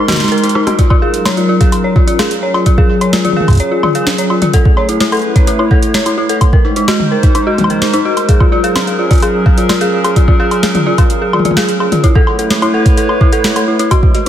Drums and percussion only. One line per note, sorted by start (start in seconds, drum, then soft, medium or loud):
0.08 snare loud
0.08 closed hi-hat soft
0.08 high tom medium
0.08 high woodblock soft
0.12 snare medium
0.16 snare medium
0.20 snare medium
0.20 closed hi-hat soft
0.24 snare soft
0.28 snare soft
0.28 closed hi-hat soft
0.38 closed hi-hat soft
0.44 closed hi-hat soft
0.49 closed hi-hat medium
0.55 cross-stick medium
0.67 cross-stick medium
0.67 closed hi-hat medium
0.67 high tom medium
0.67 high woodblock soft
0.79 kick medium
0.79 closed hi-hat medium
0.90 kick loud
0.90 high woodblock medium
1.14 closed hi-hat medium
1.25 snare loud
1.25 closed hi-hat medium
1.25 high woodblock medium
1.37 closed hi-hat soft
1.61 kick loud
1.61 closed hi-hat medium
1.72 closed hi-hat medium
1.72 high woodblock medium
1.96 kick loud
2.08 closed hi-hat medium
2.19 snare loud
2.19 closed hi-hat medium
2.19 high woodblock medium
2.31 closed hi-hat medium
2.54 high woodblock medium
2.66 kick medium
2.66 closed hi-hat medium
2.78 kick loud
3.01 closed hi-hat medium
3.01 high woodblock soft
3.13 snare loud
3.13 closed hi-hat medium
3.25 closed hi-hat soft
3.25 high tom soft
3.32 high tom soft
3.40 high tom medium
3.48 kick loud
3.48 closed hi-hat soft
3.48 high woodblock medium
3.50 kick medium
3.50 closed hi-hat soft
3.53 kick medium
3.53 closed hi-hat soft
3.55 kick medium
3.55 closed hi-hat soft
3.57 closed hi-hat soft
3.60 closed hi-hat medium
3.83 high tom medium
3.83 high woodblock medium
3.95 closed hi-hat medium
4.07 snare loud
4.07 closed hi-hat medium
4.18 closed hi-hat medium
4.30 high woodblock medium
4.42 closed hi-hat medium
4.42 high tom medium
4.53 kick medium
4.53 closed hi-hat medium
4.65 kick loud
4.77 high woodblock soft
4.89 closed hi-hat medium
5.00 snare loud
5.00 closed hi-hat medium
5.12 closed hi-hat soft
5.12 high woodblock medium
5.15 closed hi-hat soft
5.17 closed hi-hat soft
5.19 closed hi-hat soft
5.22 closed hi-hat soft
5.36 kick loud
5.36 closed hi-hat soft
5.47 closed hi-hat medium
5.59 high woodblock medium
5.71 kick loud
5.83 closed hi-hat medium
5.94 snare loud
5.94 closed hi-hat medium
6.06 closed hi-hat medium
6.06 high woodblock soft
6.29 closed hi-hat medium
6.41 kick medium
6.41 closed hi-hat medium
6.41 high woodblock medium
6.53 kick loud
6.76 closed hi-hat soft
6.88 snare loud
6.88 closed hi-hat medium
6.88 high woodblock medium
7.00 high tom medium
7.23 kick loud
7.23 closed hi-hat medium
7.35 closed hi-hat medium
7.35 high woodblock soft
7.58 closed hi-hat soft
7.58 high tom medium
7.61 high tom medium
7.64 high tom medium
7.64 high woodblock medium
7.67 closed hi-hat soft
7.67 high tom soft
7.70 high tom soft
7.73 high tom soft
7.76 high tom soft
7.79 snare loud
7.79 closed hi-hat medium
7.79 high tom soft
7.93 closed hi-hat medium
8.17 closed hi-hat soft
8.17 high woodblock soft
8.29 kick medium
8.29 closed hi-hat medium
8.40 kick loud
8.40 high woodblock soft
8.64 closed hi-hat soft
8.76 snare loud
8.76 closed hi-hat medium
8.76 high woodblock medium
8.87 closed hi-hat soft
9.11 kick loud
9.11 closed hi-hat soft
9.13 closed hi-hat soft
9.15 closed hi-hat soft
9.18 closed hi-hat soft
9.20 closed hi-hat soft
9.22 closed hi-hat medium
9.22 high woodblock soft
9.46 kick loud
9.58 closed hi-hat soft
9.69 snare loud
9.69 high woodblock soft
9.81 closed hi-hat medium
10.04 closed hi-hat medium
10.04 high woodblock medium
10.16 kick medium
10.16 closed hi-hat medium
10.28 kick loud
10.51 closed hi-hat soft
10.51 high woodblock soft
10.63 snare loud
10.63 closed hi-hat medium
10.75 closed hi-hat soft
10.75 high tom medium
10.98 kick medium
10.98 closed hi-hat soft
10.98 high woodblock medium
11.10 closed hi-hat medium
11.33 high tom soft
11.33 high woodblock medium
11.39 high tom medium
11.45 closed hi-hat medium
11.45 high tom medium
11.51 high tom medium
11.57 snare loud
11.57 closed hi-hat medium
11.69 closed hi-hat medium
11.80 high woodblock soft
11.92 closed hi-hat soft
11.92 high tom medium
12.04 kick medium
12.04 closed hi-hat medium
12.15 kick loud
12.27 high woodblock medium
12.39 closed hi-hat soft
12.51 snare loud
12.51 closed hi-hat medium
12.62 closed hi-hat soft
12.62 high woodblock medium
12.86 kick loud
12.86 closed hi-hat soft
12.97 closed hi-hat medium
13.09 high woodblock medium
13.21 kick loud
13.33 closed hi-hat soft
13.44 snare loud
13.44 closed hi-hat medium
13.56 closed hi-hat medium
13.56 high woodblock medium
13.79 closed hi-hat medium
13.91 kick medium
13.91 closed hi-hat medium
13.91 high woodblock medium
14.03 kick loud
14.15 closed hi-hat soft